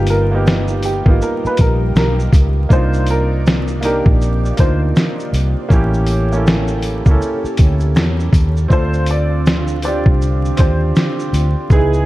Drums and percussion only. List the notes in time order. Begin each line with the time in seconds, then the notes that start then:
0.07 closed hi-hat, tambourine, shaker
0.46 snare, shaker
0.68 shaker
0.83 closed hi-hat, tambourine, shaker
1.06 kick
1.22 shaker
1.45 shaker
1.57 kick, closed hi-hat, tambourine, shaker
1.96 snare, shaker
2.19 shaker
2.33 kick, closed hi-hat, tambourine, shaker
2.70 kick, shaker
2.93 shaker
3.06 closed hi-hat, tambourine, shaker
3.46 snare, shaker
3.68 shaker
3.83 closed hi-hat, tambourine, shaker
4.06 kick
4.22 shaker
4.45 shaker
4.57 kick, closed hi-hat, tambourine, shaker
4.96 snare, shaker
5.20 shaker
5.34 closed hi-hat, tambourine, shaker
5.70 kick, shaker
5.93 shaker
6.07 closed hi-hat, tambourine, shaker
6.32 shaker
6.46 snare, shaker
6.68 shaker
6.82 closed hi-hat, tambourine, shaker
7.06 kick, shaker
7.22 shaker
7.45 shaker
7.57 kick, closed hi-hat, tambourine, shaker
7.80 shaker
7.96 snare, shaker
8.19 shaker
8.33 kick, closed hi-hat, tambourine, shaker
8.57 shaker
8.70 kick, shaker
8.93 shaker
9.06 closed hi-hat, tambourine, shaker
9.46 snare, shaker
9.67 shaker
9.82 closed hi-hat, tambourine, shaker
10.06 kick
10.22 shaker
10.45 shaker
10.57 kick, closed hi-hat, tambourine, shaker
10.96 snare, shaker
11.19 shaker
11.34 closed hi-hat, tambourine, shaker
11.70 kick, shaker
11.93 shaker